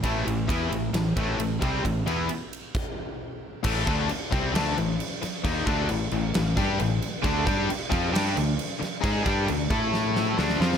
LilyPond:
<<
  \new Staff \with { instrumentName = "Overdriven electric guitar" } { \clef bass \time 4/4 \key d \major \tempo 4 = 134 <a, e a>8 <a, e>8 <e b e'>8 <a, e>8 <a, e>8 <a, e a>8 <a, e>8 <c g c'>8 | <a, e>8 <e b e'>8 r2. | r1 | r1 |
<d a d'>8 <g d' g'>8 r8 <f c' f'>8 <g d' g'>8 <d a>8 r4 | <gis dis' gis'>8 <g d' g'>8 <d a>8 <a e' a'>4. <d a d'>8 <f c' f'>8 | }
  \new Staff \with { instrumentName = "Distorted electric guitar" } { \clef bass \time 4/4 \key d \major <a, e a>8 <a, e>8 <e b e'>8 <a, e>8 <a, e>8 <a, e a>8 <a, e>8 <c g c'>8 | <a, e>8 <e b e'>8 r2. | <a, e a>8 <d a d'>8 r8 <c g c'>8 <d a d'>8 <a, e>8 r4 | <dis bes dis'>8 <d a d'>8 <a, e>8 <a, e>8 <a, e>8 <g d' g'>8 <a, e>8 r8 |
<d a d'>8 <g d' g'>8 r8 <f c' f'>8 <g d' g'>8 <d a>8 r4 | <gis dis' gis'>8 <g d' g'>8 <d a>8 <a e' a'>4. <d a d'>8 <f c' f'>8 | }
  \new Staff \with { instrumentName = "Distorted electric guitar" } { \clef bass \time 4/4 \key d \major <a, e a>8 <a, e>8 <e b e'>8 <a, e>8 <a, e>8 <a, e a>8 <a, e>8 <c g c'>8 | <a, e>8 <e b e'>8 r2. | <a, e a>8 <d a d'>8 r8 <c g c'>8 <d a d'>8 <a, e>8 r4 | <dis bes dis'>8 <d a d'>8 <a, e>8 <a, e>8 <a, e>8 <g d' g'>8 <a, e>8 r8 |
<d a d'>8 <g d' g'>8 r8 <f c' f'>8 <g d' g'>8 <d a>8 r4 | <gis dis' gis'>8 <g d' g'>8 <d a>8 <a e' a'>4. <d a d'>8 <f c' f'>8 | }
  \new Staff \with { instrumentName = "Fingered electric bass" } { \clef bass \time 4/4 \key d \major a,,8 a,,8 e,8 a,,8 a,,8 a,,8 a,,8 c,8 | a,,8 e,8 r2. | a,,8 d,8 r8 c,8 d,8 a,,8 r4 | dis,8 d,8 a,,8 a,,8 a,,8 g,8 a,,8 r8 |
d,8 g,8 r8 f,8 g,8 d,8 r4 | gis,8 g,8 d,8 a,4. d,8 f,8 | }
  \new DrumStaff \with { instrumentName = "Drums" } \drummode { \time 4/4 <bd cymr>8 cymr8 <bd cymr>8 cymr8 <cymr sn>8 <bd cymr>8 cymr8 <bd cymr>8 | <bd cymr>8 cymr8 cymr8 cymr8 <cymc bd>4 r4 | <cymc bd>8 <cymc bd>8 cymc8 <cymc bd>8 <cymc sn>8 cymc8 cymc8 <cymc sn>8 | <cymc bd>8 <cymc bd>8 cymc8 cymc8 <cymc sn>8 <cymc bd>8 cymc8 cymc8 |
<cymc bd>8 <cymc bd>8 cymc8 <cymc bd>8 <cymc sn>8 cymc8 cymc8 <cymc sn>8 | <cymc bd>8 <cymc bd>8 cymc8 <cymc bd>8 sn8 sn8 sn16 sn16 sn16 sn16 | }
>>